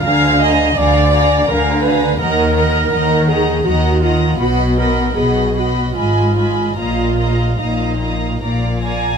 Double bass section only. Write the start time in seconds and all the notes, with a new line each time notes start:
0.03 D2
0.76 D2
1.48 D2
2.19 D#2
2.92 D#2
3.66 D#2
4.40 B1
5.16 B1
5.95 G#1
6.78 A#1
7.60 A#1
8.42 A#1